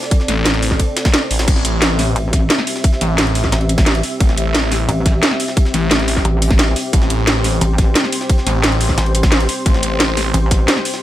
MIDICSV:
0, 0, Header, 1, 5, 480
1, 0, Start_track
1, 0, Key_signature, 0, "minor"
1, 0, Tempo, 340909
1, 161, Time_signature, 4, 2, 24, 8
1, 15525, End_track
2, 0, Start_track
2, 0, Title_t, "Analog synth pad"
2, 0, Program_c, 0, 89
2, 0, Note_on_c, 0, 60, 82
2, 0, Note_on_c, 0, 69, 74
2, 0, Note_on_c, 0, 74, 92
2, 2023, Note_off_c, 0, 69, 0
2, 2047, Note_off_c, 0, 74, 0
2, 2080, Note_on_c, 0, 67, 76
2, 2082, Note_on_c, 0, 76, 88
2, 9728, Note_off_c, 0, 76, 0
2, 9761, Note_on_c, 0, 72, 93
2, 15525, Note_off_c, 0, 60, 0
2, 15525, Note_off_c, 0, 67, 0
2, 15525, Note_off_c, 0, 72, 0
2, 15525, End_track
3, 0, Start_track
3, 0, Title_t, "Detuned saw bass"
3, 0, Program_c, 1, 39
3, 400, Note_on_c, 1, 33, 99
3, 1101, Note_off_c, 1, 33, 0
3, 1840, Note_on_c, 1, 33, 94
3, 2061, Note_off_c, 1, 33, 0
3, 2080, Note_on_c, 1, 33, 104
3, 2301, Note_off_c, 1, 33, 0
3, 2320, Note_on_c, 1, 33, 100
3, 3021, Note_off_c, 1, 33, 0
3, 4240, Note_on_c, 1, 33, 98
3, 4941, Note_off_c, 1, 33, 0
3, 5920, Note_on_c, 1, 33, 99
3, 6141, Note_off_c, 1, 33, 0
3, 6160, Note_on_c, 1, 33, 103
3, 6861, Note_off_c, 1, 33, 0
3, 8080, Note_on_c, 1, 33, 100
3, 8781, Note_off_c, 1, 33, 0
3, 9761, Note_on_c, 1, 33, 97
3, 9981, Note_off_c, 1, 33, 0
3, 10000, Note_on_c, 1, 33, 98
3, 10701, Note_off_c, 1, 33, 0
3, 11919, Note_on_c, 1, 33, 100
3, 12620, Note_off_c, 1, 33, 0
3, 13600, Note_on_c, 1, 33, 101
3, 13821, Note_off_c, 1, 33, 0
3, 13840, Note_on_c, 1, 33, 102
3, 14541, Note_off_c, 1, 33, 0
3, 15525, End_track
4, 0, Start_track
4, 0, Title_t, "Wobble bass"
4, 0, Program_c, 2, 39
4, 3039, Note_on_c, 2, 33, 99
4, 3501, Note_off_c, 2, 33, 0
4, 4960, Note_on_c, 2, 33, 97
4, 5661, Note_off_c, 2, 33, 0
4, 6879, Note_on_c, 2, 33, 100
4, 7340, Note_off_c, 2, 33, 0
4, 8800, Note_on_c, 2, 33, 97
4, 9501, Note_off_c, 2, 33, 0
4, 10719, Note_on_c, 2, 33, 98
4, 11180, Note_off_c, 2, 33, 0
4, 12639, Note_on_c, 2, 33, 100
4, 13341, Note_off_c, 2, 33, 0
4, 14560, Note_on_c, 2, 33, 100
4, 15021, Note_off_c, 2, 33, 0
4, 15525, End_track
5, 0, Start_track
5, 0, Title_t, "Drums"
5, 40, Note_on_c, 9, 38, 54
5, 159, Note_on_c, 9, 42, 88
5, 160, Note_on_c, 9, 36, 124
5, 160, Note_on_c, 9, 51, 87
5, 181, Note_off_c, 9, 38, 0
5, 280, Note_on_c, 9, 38, 38
5, 300, Note_off_c, 9, 36, 0
5, 300, Note_off_c, 9, 42, 0
5, 301, Note_off_c, 9, 51, 0
5, 399, Note_on_c, 9, 40, 35
5, 399, Note_on_c, 9, 42, 99
5, 400, Note_on_c, 9, 51, 67
5, 421, Note_off_c, 9, 38, 0
5, 540, Note_off_c, 9, 40, 0
5, 540, Note_off_c, 9, 42, 0
5, 541, Note_off_c, 9, 51, 0
5, 640, Note_on_c, 9, 38, 123
5, 640, Note_on_c, 9, 42, 85
5, 640, Note_on_c, 9, 51, 92
5, 760, Note_off_c, 9, 51, 0
5, 760, Note_on_c, 9, 51, 45
5, 780, Note_off_c, 9, 42, 0
5, 781, Note_off_c, 9, 38, 0
5, 880, Note_off_c, 9, 51, 0
5, 880, Note_on_c, 9, 46, 79
5, 880, Note_on_c, 9, 51, 69
5, 1000, Note_on_c, 9, 36, 60
5, 1000, Note_on_c, 9, 38, 35
5, 1021, Note_off_c, 9, 46, 0
5, 1021, Note_off_c, 9, 51, 0
5, 1119, Note_on_c, 9, 42, 86
5, 1120, Note_off_c, 9, 36, 0
5, 1120, Note_on_c, 9, 36, 61
5, 1120, Note_on_c, 9, 51, 86
5, 1141, Note_off_c, 9, 38, 0
5, 1260, Note_off_c, 9, 42, 0
5, 1261, Note_off_c, 9, 36, 0
5, 1261, Note_off_c, 9, 51, 0
5, 1359, Note_on_c, 9, 42, 101
5, 1360, Note_on_c, 9, 38, 109
5, 1360, Note_on_c, 9, 51, 79
5, 1480, Note_off_c, 9, 38, 0
5, 1480, Note_off_c, 9, 51, 0
5, 1480, Note_on_c, 9, 36, 104
5, 1480, Note_on_c, 9, 38, 110
5, 1480, Note_on_c, 9, 40, 36
5, 1480, Note_on_c, 9, 51, 83
5, 1500, Note_off_c, 9, 42, 0
5, 1599, Note_off_c, 9, 38, 0
5, 1599, Note_off_c, 9, 51, 0
5, 1599, Note_on_c, 9, 38, 110
5, 1599, Note_on_c, 9, 51, 81
5, 1600, Note_off_c, 9, 38, 0
5, 1600, Note_on_c, 9, 38, 113
5, 1600, Note_on_c, 9, 42, 82
5, 1620, Note_off_c, 9, 36, 0
5, 1620, Note_off_c, 9, 40, 0
5, 1740, Note_off_c, 9, 38, 0
5, 1740, Note_off_c, 9, 42, 0
5, 1740, Note_off_c, 9, 51, 0
5, 1840, Note_on_c, 9, 46, 80
5, 1840, Note_on_c, 9, 51, 66
5, 1960, Note_off_c, 9, 51, 0
5, 1960, Note_on_c, 9, 38, 113
5, 1960, Note_on_c, 9, 51, 87
5, 1981, Note_off_c, 9, 46, 0
5, 2080, Note_off_c, 9, 51, 0
5, 2080, Note_on_c, 9, 36, 125
5, 2080, Note_on_c, 9, 42, 89
5, 2080, Note_on_c, 9, 49, 81
5, 2080, Note_on_c, 9, 51, 88
5, 2101, Note_off_c, 9, 38, 0
5, 2201, Note_on_c, 9, 38, 52
5, 2221, Note_off_c, 9, 36, 0
5, 2221, Note_off_c, 9, 42, 0
5, 2221, Note_off_c, 9, 49, 0
5, 2221, Note_off_c, 9, 51, 0
5, 2320, Note_on_c, 9, 42, 102
5, 2321, Note_on_c, 9, 51, 68
5, 2341, Note_off_c, 9, 38, 0
5, 2461, Note_off_c, 9, 42, 0
5, 2461, Note_off_c, 9, 51, 0
5, 2560, Note_on_c, 9, 38, 120
5, 2560, Note_on_c, 9, 42, 86
5, 2560, Note_on_c, 9, 51, 91
5, 2701, Note_off_c, 9, 38, 0
5, 2701, Note_off_c, 9, 42, 0
5, 2701, Note_off_c, 9, 51, 0
5, 2800, Note_on_c, 9, 51, 71
5, 2801, Note_on_c, 9, 40, 36
5, 2801, Note_on_c, 9, 46, 81
5, 2941, Note_off_c, 9, 40, 0
5, 2941, Note_off_c, 9, 46, 0
5, 2941, Note_off_c, 9, 51, 0
5, 3041, Note_on_c, 9, 42, 84
5, 3041, Note_on_c, 9, 51, 90
5, 3181, Note_off_c, 9, 42, 0
5, 3181, Note_off_c, 9, 51, 0
5, 3280, Note_on_c, 9, 36, 110
5, 3281, Note_on_c, 9, 38, 47
5, 3281, Note_on_c, 9, 42, 97
5, 3281, Note_on_c, 9, 51, 69
5, 3421, Note_off_c, 9, 36, 0
5, 3422, Note_off_c, 9, 38, 0
5, 3422, Note_off_c, 9, 42, 0
5, 3422, Note_off_c, 9, 51, 0
5, 3521, Note_on_c, 9, 38, 116
5, 3521, Note_on_c, 9, 42, 80
5, 3521, Note_on_c, 9, 51, 90
5, 3641, Note_off_c, 9, 38, 0
5, 3641, Note_on_c, 9, 38, 40
5, 3641, Note_on_c, 9, 40, 50
5, 3661, Note_off_c, 9, 42, 0
5, 3662, Note_off_c, 9, 51, 0
5, 3760, Note_on_c, 9, 46, 76
5, 3761, Note_on_c, 9, 51, 72
5, 3781, Note_off_c, 9, 40, 0
5, 3782, Note_off_c, 9, 38, 0
5, 3882, Note_on_c, 9, 38, 54
5, 3901, Note_off_c, 9, 46, 0
5, 3902, Note_off_c, 9, 51, 0
5, 4000, Note_on_c, 9, 36, 127
5, 4000, Note_on_c, 9, 42, 83
5, 4001, Note_on_c, 9, 51, 89
5, 4022, Note_off_c, 9, 38, 0
5, 4121, Note_on_c, 9, 38, 38
5, 4141, Note_off_c, 9, 36, 0
5, 4141, Note_off_c, 9, 42, 0
5, 4142, Note_off_c, 9, 51, 0
5, 4240, Note_on_c, 9, 40, 36
5, 4240, Note_on_c, 9, 42, 96
5, 4241, Note_on_c, 9, 51, 67
5, 4262, Note_off_c, 9, 38, 0
5, 4381, Note_off_c, 9, 40, 0
5, 4381, Note_off_c, 9, 42, 0
5, 4382, Note_off_c, 9, 51, 0
5, 4480, Note_on_c, 9, 38, 124
5, 4480, Note_on_c, 9, 42, 84
5, 4481, Note_off_c, 9, 38, 0
5, 4481, Note_on_c, 9, 38, 121
5, 4481, Note_on_c, 9, 51, 93
5, 4601, Note_off_c, 9, 51, 0
5, 4601, Note_on_c, 9, 51, 44
5, 4621, Note_off_c, 9, 38, 0
5, 4621, Note_off_c, 9, 42, 0
5, 4720, Note_on_c, 9, 46, 76
5, 4721, Note_off_c, 9, 51, 0
5, 4721, Note_on_c, 9, 51, 70
5, 4840, Note_on_c, 9, 36, 65
5, 4840, Note_on_c, 9, 38, 39
5, 4861, Note_off_c, 9, 46, 0
5, 4862, Note_off_c, 9, 51, 0
5, 4961, Note_off_c, 9, 38, 0
5, 4961, Note_on_c, 9, 38, 105
5, 4961, Note_on_c, 9, 42, 82
5, 4961, Note_on_c, 9, 51, 77
5, 4981, Note_off_c, 9, 36, 0
5, 5081, Note_off_c, 9, 51, 0
5, 5081, Note_on_c, 9, 51, 41
5, 5101, Note_off_c, 9, 42, 0
5, 5102, Note_off_c, 9, 38, 0
5, 5200, Note_on_c, 9, 42, 96
5, 5201, Note_off_c, 9, 51, 0
5, 5201, Note_on_c, 9, 51, 64
5, 5320, Note_on_c, 9, 36, 115
5, 5320, Note_on_c, 9, 40, 37
5, 5321, Note_off_c, 9, 51, 0
5, 5321, Note_on_c, 9, 38, 109
5, 5321, Note_on_c, 9, 51, 81
5, 5341, Note_off_c, 9, 42, 0
5, 5440, Note_off_c, 9, 38, 0
5, 5440, Note_on_c, 9, 38, 121
5, 5440, Note_on_c, 9, 42, 79
5, 5441, Note_off_c, 9, 51, 0
5, 5441, Note_on_c, 9, 51, 41
5, 5461, Note_off_c, 9, 36, 0
5, 5461, Note_off_c, 9, 40, 0
5, 5560, Note_off_c, 9, 51, 0
5, 5560, Note_on_c, 9, 51, 62
5, 5581, Note_off_c, 9, 38, 0
5, 5581, Note_off_c, 9, 42, 0
5, 5680, Note_off_c, 9, 51, 0
5, 5680, Note_on_c, 9, 46, 75
5, 5680, Note_on_c, 9, 51, 72
5, 5821, Note_off_c, 9, 46, 0
5, 5821, Note_off_c, 9, 51, 0
5, 5920, Note_on_c, 9, 36, 127
5, 5920, Note_on_c, 9, 42, 80
5, 5921, Note_on_c, 9, 51, 93
5, 6040, Note_on_c, 9, 38, 51
5, 6061, Note_off_c, 9, 36, 0
5, 6061, Note_off_c, 9, 42, 0
5, 6061, Note_off_c, 9, 51, 0
5, 6160, Note_on_c, 9, 42, 91
5, 6160, Note_on_c, 9, 51, 70
5, 6181, Note_off_c, 9, 38, 0
5, 6301, Note_off_c, 9, 42, 0
5, 6301, Note_off_c, 9, 51, 0
5, 6400, Note_on_c, 9, 38, 124
5, 6400, Note_on_c, 9, 42, 79
5, 6400, Note_on_c, 9, 51, 90
5, 6540, Note_off_c, 9, 42, 0
5, 6541, Note_off_c, 9, 38, 0
5, 6541, Note_off_c, 9, 51, 0
5, 6640, Note_on_c, 9, 40, 35
5, 6640, Note_on_c, 9, 46, 83
5, 6640, Note_on_c, 9, 51, 73
5, 6781, Note_off_c, 9, 40, 0
5, 6781, Note_off_c, 9, 46, 0
5, 6781, Note_off_c, 9, 51, 0
5, 6880, Note_on_c, 9, 42, 80
5, 6880, Note_on_c, 9, 51, 88
5, 7021, Note_off_c, 9, 42, 0
5, 7021, Note_off_c, 9, 51, 0
5, 7120, Note_on_c, 9, 36, 114
5, 7120, Note_on_c, 9, 38, 46
5, 7120, Note_on_c, 9, 42, 96
5, 7120, Note_on_c, 9, 51, 68
5, 7261, Note_off_c, 9, 36, 0
5, 7261, Note_off_c, 9, 38, 0
5, 7261, Note_off_c, 9, 42, 0
5, 7261, Note_off_c, 9, 51, 0
5, 7360, Note_on_c, 9, 38, 120
5, 7360, Note_on_c, 9, 42, 74
5, 7360, Note_on_c, 9, 51, 89
5, 7480, Note_off_c, 9, 38, 0
5, 7480, Note_on_c, 9, 38, 40
5, 7480, Note_on_c, 9, 40, 49
5, 7501, Note_off_c, 9, 42, 0
5, 7501, Note_off_c, 9, 51, 0
5, 7600, Note_on_c, 9, 51, 71
5, 7601, Note_on_c, 9, 46, 80
5, 7621, Note_off_c, 9, 38, 0
5, 7621, Note_off_c, 9, 40, 0
5, 7720, Note_on_c, 9, 38, 54
5, 7741, Note_off_c, 9, 46, 0
5, 7741, Note_off_c, 9, 51, 0
5, 7840, Note_on_c, 9, 36, 126
5, 7840, Note_on_c, 9, 42, 80
5, 7840, Note_on_c, 9, 51, 89
5, 7861, Note_off_c, 9, 38, 0
5, 7961, Note_on_c, 9, 38, 39
5, 7981, Note_off_c, 9, 36, 0
5, 7981, Note_off_c, 9, 42, 0
5, 7981, Note_off_c, 9, 51, 0
5, 8081, Note_on_c, 9, 40, 34
5, 8081, Note_on_c, 9, 42, 89
5, 8081, Note_on_c, 9, 51, 71
5, 8102, Note_off_c, 9, 38, 0
5, 8221, Note_off_c, 9, 51, 0
5, 8222, Note_off_c, 9, 40, 0
5, 8222, Note_off_c, 9, 42, 0
5, 8320, Note_on_c, 9, 38, 118
5, 8320, Note_on_c, 9, 42, 77
5, 8320, Note_on_c, 9, 51, 89
5, 8440, Note_off_c, 9, 51, 0
5, 8440, Note_on_c, 9, 51, 45
5, 8461, Note_off_c, 9, 38, 0
5, 8461, Note_off_c, 9, 42, 0
5, 8560, Note_on_c, 9, 46, 82
5, 8561, Note_off_c, 9, 51, 0
5, 8561, Note_on_c, 9, 51, 71
5, 8679, Note_on_c, 9, 38, 39
5, 8680, Note_on_c, 9, 36, 67
5, 8701, Note_off_c, 9, 46, 0
5, 8701, Note_off_c, 9, 51, 0
5, 8800, Note_on_c, 9, 42, 78
5, 8820, Note_off_c, 9, 38, 0
5, 8821, Note_off_c, 9, 36, 0
5, 8940, Note_off_c, 9, 42, 0
5, 9040, Note_on_c, 9, 42, 90
5, 9041, Note_on_c, 9, 46, 83
5, 9160, Note_on_c, 9, 36, 110
5, 9160, Note_on_c, 9, 40, 34
5, 9161, Note_on_c, 9, 51, 46
5, 9180, Note_off_c, 9, 42, 0
5, 9181, Note_off_c, 9, 46, 0
5, 9279, Note_on_c, 9, 38, 119
5, 9279, Note_on_c, 9, 42, 77
5, 9281, Note_off_c, 9, 38, 0
5, 9281, Note_off_c, 9, 51, 0
5, 9281, Note_on_c, 9, 38, 118
5, 9281, Note_on_c, 9, 51, 92
5, 9300, Note_off_c, 9, 40, 0
5, 9301, Note_off_c, 9, 36, 0
5, 9420, Note_off_c, 9, 42, 0
5, 9421, Note_off_c, 9, 38, 0
5, 9421, Note_off_c, 9, 51, 0
5, 9520, Note_on_c, 9, 46, 81
5, 9521, Note_on_c, 9, 51, 75
5, 9661, Note_off_c, 9, 46, 0
5, 9662, Note_off_c, 9, 51, 0
5, 9760, Note_on_c, 9, 36, 123
5, 9760, Note_on_c, 9, 42, 79
5, 9761, Note_on_c, 9, 51, 91
5, 9881, Note_on_c, 9, 38, 50
5, 9901, Note_off_c, 9, 36, 0
5, 9901, Note_off_c, 9, 42, 0
5, 9901, Note_off_c, 9, 51, 0
5, 10000, Note_on_c, 9, 42, 91
5, 10001, Note_on_c, 9, 51, 69
5, 10021, Note_off_c, 9, 38, 0
5, 10141, Note_off_c, 9, 42, 0
5, 10141, Note_off_c, 9, 51, 0
5, 10240, Note_on_c, 9, 38, 122
5, 10240, Note_on_c, 9, 42, 78
5, 10241, Note_off_c, 9, 38, 0
5, 10241, Note_on_c, 9, 38, 118
5, 10241, Note_on_c, 9, 51, 89
5, 10381, Note_off_c, 9, 38, 0
5, 10381, Note_off_c, 9, 42, 0
5, 10381, Note_off_c, 9, 51, 0
5, 10480, Note_on_c, 9, 40, 33
5, 10480, Note_on_c, 9, 46, 88
5, 10480, Note_on_c, 9, 51, 72
5, 10621, Note_off_c, 9, 40, 0
5, 10621, Note_off_c, 9, 46, 0
5, 10621, Note_off_c, 9, 51, 0
5, 10720, Note_on_c, 9, 42, 79
5, 10720, Note_on_c, 9, 51, 84
5, 10860, Note_off_c, 9, 42, 0
5, 10861, Note_off_c, 9, 51, 0
5, 10959, Note_on_c, 9, 42, 90
5, 10960, Note_on_c, 9, 36, 111
5, 10960, Note_on_c, 9, 38, 47
5, 10960, Note_on_c, 9, 51, 69
5, 11100, Note_off_c, 9, 42, 0
5, 11101, Note_off_c, 9, 36, 0
5, 11101, Note_off_c, 9, 38, 0
5, 11101, Note_off_c, 9, 51, 0
5, 11200, Note_on_c, 9, 38, 119
5, 11200, Note_on_c, 9, 42, 74
5, 11200, Note_on_c, 9, 51, 91
5, 11320, Note_off_c, 9, 38, 0
5, 11320, Note_on_c, 9, 38, 41
5, 11320, Note_on_c, 9, 40, 47
5, 11340, Note_off_c, 9, 42, 0
5, 11341, Note_off_c, 9, 51, 0
5, 11439, Note_on_c, 9, 46, 85
5, 11440, Note_on_c, 9, 51, 71
5, 11460, Note_off_c, 9, 40, 0
5, 11461, Note_off_c, 9, 38, 0
5, 11560, Note_on_c, 9, 38, 54
5, 11580, Note_off_c, 9, 46, 0
5, 11581, Note_off_c, 9, 51, 0
5, 11679, Note_on_c, 9, 42, 81
5, 11680, Note_on_c, 9, 36, 123
5, 11680, Note_on_c, 9, 51, 91
5, 11701, Note_off_c, 9, 38, 0
5, 11800, Note_on_c, 9, 38, 38
5, 11820, Note_off_c, 9, 36, 0
5, 11820, Note_off_c, 9, 42, 0
5, 11820, Note_off_c, 9, 51, 0
5, 11919, Note_on_c, 9, 40, 33
5, 11919, Note_on_c, 9, 42, 93
5, 11920, Note_on_c, 9, 51, 71
5, 11940, Note_off_c, 9, 38, 0
5, 12060, Note_off_c, 9, 40, 0
5, 12060, Note_off_c, 9, 42, 0
5, 12061, Note_off_c, 9, 51, 0
5, 12159, Note_on_c, 9, 38, 119
5, 12159, Note_on_c, 9, 42, 79
5, 12160, Note_off_c, 9, 38, 0
5, 12160, Note_on_c, 9, 38, 119
5, 12160, Note_on_c, 9, 51, 90
5, 12280, Note_off_c, 9, 51, 0
5, 12280, Note_on_c, 9, 51, 46
5, 12300, Note_off_c, 9, 42, 0
5, 12301, Note_off_c, 9, 38, 0
5, 12399, Note_on_c, 9, 46, 85
5, 12400, Note_off_c, 9, 51, 0
5, 12400, Note_on_c, 9, 51, 73
5, 12519, Note_on_c, 9, 36, 59
5, 12519, Note_on_c, 9, 38, 35
5, 12540, Note_off_c, 9, 46, 0
5, 12541, Note_off_c, 9, 51, 0
5, 12639, Note_on_c, 9, 42, 82
5, 12640, Note_off_c, 9, 38, 0
5, 12640, Note_on_c, 9, 38, 104
5, 12640, Note_on_c, 9, 51, 76
5, 12660, Note_off_c, 9, 36, 0
5, 12761, Note_off_c, 9, 51, 0
5, 12761, Note_on_c, 9, 51, 40
5, 12780, Note_off_c, 9, 42, 0
5, 12781, Note_off_c, 9, 38, 0
5, 12879, Note_on_c, 9, 42, 93
5, 12880, Note_off_c, 9, 51, 0
5, 12880, Note_on_c, 9, 51, 65
5, 12999, Note_on_c, 9, 36, 104
5, 12999, Note_on_c, 9, 40, 34
5, 13000, Note_off_c, 9, 51, 0
5, 13000, Note_on_c, 9, 38, 110
5, 13000, Note_on_c, 9, 51, 85
5, 13020, Note_off_c, 9, 42, 0
5, 13120, Note_off_c, 9, 38, 0
5, 13120, Note_off_c, 9, 51, 0
5, 13120, Note_on_c, 9, 38, 112
5, 13120, Note_on_c, 9, 42, 78
5, 13120, Note_on_c, 9, 51, 42
5, 13140, Note_off_c, 9, 36, 0
5, 13140, Note_off_c, 9, 40, 0
5, 13241, Note_off_c, 9, 51, 0
5, 13241, Note_on_c, 9, 51, 62
5, 13260, Note_off_c, 9, 38, 0
5, 13260, Note_off_c, 9, 42, 0
5, 13360, Note_on_c, 9, 46, 83
5, 13361, Note_off_c, 9, 51, 0
5, 13361, Note_on_c, 9, 51, 72
5, 13500, Note_off_c, 9, 46, 0
5, 13502, Note_off_c, 9, 51, 0
5, 13600, Note_on_c, 9, 36, 122
5, 13600, Note_on_c, 9, 42, 86
5, 13601, Note_on_c, 9, 51, 89
5, 13720, Note_on_c, 9, 38, 52
5, 13741, Note_off_c, 9, 36, 0
5, 13741, Note_off_c, 9, 42, 0
5, 13742, Note_off_c, 9, 51, 0
5, 13839, Note_on_c, 9, 42, 98
5, 13840, Note_on_c, 9, 51, 67
5, 13861, Note_off_c, 9, 38, 0
5, 13980, Note_off_c, 9, 42, 0
5, 13981, Note_off_c, 9, 51, 0
5, 14080, Note_on_c, 9, 38, 120
5, 14080, Note_on_c, 9, 42, 84
5, 14080, Note_on_c, 9, 51, 92
5, 14221, Note_off_c, 9, 38, 0
5, 14221, Note_off_c, 9, 42, 0
5, 14221, Note_off_c, 9, 51, 0
5, 14320, Note_on_c, 9, 40, 35
5, 14320, Note_on_c, 9, 46, 85
5, 14321, Note_on_c, 9, 51, 70
5, 14461, Note_off_c, 9, 40, 0
5, 14461, Note_off_c, 9, 46, 0
5, 14461, Note_off_c, 9, 51, 0
5, 14560, Note_on_c, 9, 42, 84
5, 14560, Note_on_c, 9, 51, 88
5, 14701, Note_off_c, 9, 42, 0
5, 14701, Note_off_c, 9, 51, 0
5, 14800, Note_on_c, 9, 36, 103
5, 14800, Note_on_c, 9, 38, 47
5, 14800, Note_on_c, 9, 42, 96
5, 14800, Note_on_c, 9, 51, 70
5, 14941, Note_off_c, 9, 36, 0
5, 14941, Note_off_c, 9, 38, 0
5, 14941, Note_off_c, 9, 42, 0
5, 14941, Note_off_c, 9, 51, 0
5, 15040, Note_on_c, 9, 38, 108
5, 15040, Note_on_c, 9, 42, 80
5, 15040, Note_on_c, 9, 51, 88
5, 15160, Note_off_c, 9, 38, 0
5, 15160, Note_on_c, 9, 38, 40
5, 15160, Note_on_c, 9, 40, 48
5, 15180, Note_off_c, 9, 51, 0
5, 15181, Note_off_c, 9, 42, 0
5, 15280, Note_on_c, 9, 46, 83
5, 15280, Note_on_c, 9, 51, 72
5, 15301, Note_off_c, 9, 38, 0
5, 15301, Note_off_c, 9, 40, 0
5, 15400, Note_on_c, 9, 38, 55
5, 15420, Note_off_c, 9, 51, 0
5, 15421, Note_off_c, 9, 46, 0
5, 15525, Note_off_c, 9, 38, 0
5, 15525, End_track
0, 0, End_of_file